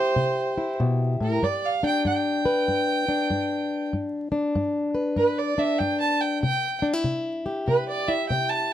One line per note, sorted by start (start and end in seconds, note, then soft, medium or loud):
0.00 0.13 C3 medium
0.00 0.56 E4 medium
0.00 2.45 G4 medium
0.00 0.77 C5 loud
0.16 0.75 C3 medium
0.58 1.40 E4 medium
0.80 1.20 B2 medium
1.20 1.42 A2 medium
1.20 1.45 A#4 medium
1.43 2.01 G2 medium
1.43 1.67 D5 medium
1.66 1.85 F5 medium
1.83 3.07 D4 medium
1.83 2.05 G5 medium
2.05 2.63 G2 medium
2.05 3.89 G5 medium
2.45 3.90 B4 medium
2.68 3.26 G2 medium
3.08 4.31 D4 medium
3.30 3.88 G2 medium
3.93 4.51 G2 medium
4.32 5.57 D4 medium
4.55 5.13 G2 medium
4.94 6.39 B4 medium
5.16 5.75 G2 medium
5.16 5.40 B4 medium
5.38 5.60 D5 medium
5.58 6.43 D4 medium
5.58 5.80 E5 medium
5.79 6.38 G2 medium
5.79 6.00 G5 medium
6.00 6.22 A5 medium
6.21 6.41 G5 medium
6.42 7.01 C3 medium
6.42 6.81 G5 medium
6.82 6.93 D4 medium
6.93 8.07 E4 soft
7.04 7.62 C3 medium
7.46 8.73 G4 medium
7.67 8.25 C3 medium
7.67 7.87 B4 medium
7.88 8.10 D5 medium
8.08 8.73 E4 medium
8.08 8.29 E5 medium
8.29 8.73 C3 medium
8.29 8.51 G5 medium
8.49 8.73 A5 medium